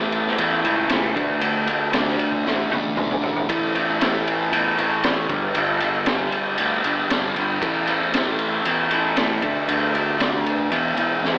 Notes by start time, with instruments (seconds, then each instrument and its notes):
Already playing: fingered electric bass A1, distorted electric guitar A2 E3 A3
0.12 ride
0.27 snare
0.38 fingered electric bass E2, distorted electric guitar A2 E3 A3, ride
0.64 fingered electric bass C#2, distorted electric guitar E3 A3, ride
0.89 distorted electric guitar A2 E3 A3, snare, ride
1.15 fingered electric bass D2, distorted electric guitar D3 A3 D4, kick, ride
1.40 distorted electric guitar D3 A3 D4, ride
1.66 distorted electric guitar A3 D4, ride
1.92 distorted electric guitar D3 A3 D4, snare, ride
2.07 snare
2.19 ride
2.32 kick
2.45 fingered electric bass A1, distorted electric guitar D3 A3 D4, snare
2.70 fingered electric bass C#2, distorted electric guitar A3 D4, high tom
2.95 fingered electric bass B1, distorted electric guitar D3 A3, mid tom
3.00 distorted electric guitar D4
3.11 mid tom
3.21 fingered electric bass A1, distorted electric guitar A3 D4, floor tom
3.36 floor tom
3.48 fingered electric bass A1, distorted electric guitar A2 E3 A3, kick, ride
3.75 distorted electric guitar E3 A3, ride
4.00 distorted electric guitar A2 E3 A3, snare, ride
4.27 ride
4.52 fingered electric bass E2, distorted electric guitar A2 E3 A3, ride
4.78 fingered electric bass A1, distorted electric guitar E3 A3, ride
5.03 distorted electric guitar A2 E3 A3, snare, ride
5.28 fingered electric bass G1, distorted electric guitar G2 D3 G3, kick, ride
5.54 distorted electric guitar G2 D3 G3, ride
5.80 distorted electric guitar D3 G3, ride
6.06 distorted electric guitar G2 D3 G3, snare, ride
6.32 ride
6.58 fingered electric bass D2, distorted electric guitar G2 D3 G3, ride
6.83 fingered electric bass G1, distorted electric guitar D3 G3, ride
7.09 distorted electric guitar G2 D3 G3, snare, ride
7.35 distorted electric guitar D3 G3, ride
7.61 fingered electric bass A1, distorted electric guitar A2 E3 A3, kick, ride
7.86 distorted electric guitar E3 A3, ride
8.12 distorted electric guitar A2 E3 A3, snare, ride
8.39 ride
8.65 fingered electric bass E2, distorted electric guitar A2 E3 A3, ride
8.90 fingered electric bass A1, distorted electric guitar E3 A3, ride
9.16 distorted electric guitar A2 E3 A3, snare, ride
9.42 fingered electric bass D2, distorted electric guitar D3 A3 D4, kick, ride
9.68 distorted electric guitar D3 A3 D4, ride
9.93 distorted electric guitar A3 D4, ride
10.18 distorted electric guitar D3 A3 D4, snare, ride
10.46 ride
10.59 kick
10.70 distorted electric guitar E2 B2 E3, fingered electric bass E2, ride
10.96 fingered electric bass E2, distorted electric guitar B2 E3, ride
11.21 distorted electric guitar E2 B2 E3, snare